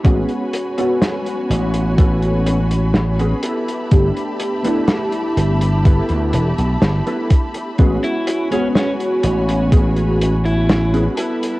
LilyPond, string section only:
\new Staff \with { instrumentName = "String section" } { \time 4/4 \key a \major \tempo 4 = 62 << { b''1~ | b''1~ | b''2.~ b''8 b''8 | } \\ { <fis' cis'' gis''>2.~ <fis' cis'' gis''>8 <g' e'' a''>8~ | <g' e'' a''>1 | <fis' cis'' gis''>2.~ <fis' cis'' gis''>8 <g e'' a''>8 | } >> }